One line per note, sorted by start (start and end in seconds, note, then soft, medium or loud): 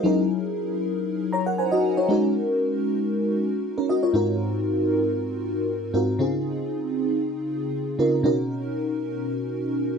0.03 2.05 F#3 medium
0.03 2.05 C#4 medium
0.03 1.30 D#4 medium
0.03 1.30 E4 medium
0.03 1.31 G#4 medium
0.03 1.31 A#4 medium
1.33 1.46 C#5 medium
1.33 1.46 A#5 medium
1.46 1.58 A#4 medium
1.46 1.58 F#5 medium
1.58 1.72 C5 medium
1.58 1.72 G#5 medium
1.72 1.97 F#4 medium
1.72 1.96 D#5 medium
1.97 2.22 E4 soft
1.97 2.22 C#5 medium
2.08 4.10 G#3 medium
2.08 3.35 C#4 medium
2.08 3.35 D#4 medium
2.08 3.36 F#4 medium
2.08 3.36 A#4 medium
3.78 3.89 C#4 medium
3.78 3.89 A#4 medium
3.89 4.03 F#4 medium
3.89 4.03 D#5 medium
4.03 4.13 F4 soft
4.03 4.27 C#5 medium
4.13 5.90 G#2 medium
4.13 5.90 C4 medium
4.13 5.90 D#4 medium
4.13 5.91 F4 medium
4.13 5.91 F#4 medium
4.13 5.91 A#4 medium
5.93 6.19 G#2 medium
5.93 6.18 C4 soft
5.93 6.19 D#4 soft
5.93 6.19 F4 soft
5.93 6.20 F#4 soft
5.93 6.20 A#4 medium
6.19 7.95 C#3 medium
6.19 7.95 C4 medium
6.19 7.95 D#4 medium
6.19 7.96 F4 medium
6.19 7.96 G#4 medium
7.99 8.24 C#3 medium
7.99 8.24 C4 soft
7.99 8.23 D#4 soft
7.99 8.25 F4 medium
7.99 8.25 A#4 medium
8.23 9.98 B2 medium
8.23 9.98 C#4 medium
8.23 9.98 D#4 medium
8.23 9.98 F#4 medium
8.23 9.98 A#4 medium